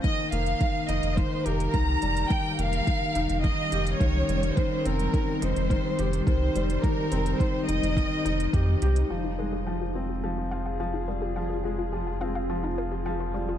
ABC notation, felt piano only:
X:1
M:4/4
L:1/8
Q:1/4=106
K:Fm
V:1 name="Felt piano" clef=bass
E, B, E, E E, G E, G, | E, B, E, E E, G E, G, | E, C E, E E, G E, G, | E, C E, E E, E G G |
F, A, F, C F, F F, G, | F, A, F, C F, F F, G, |]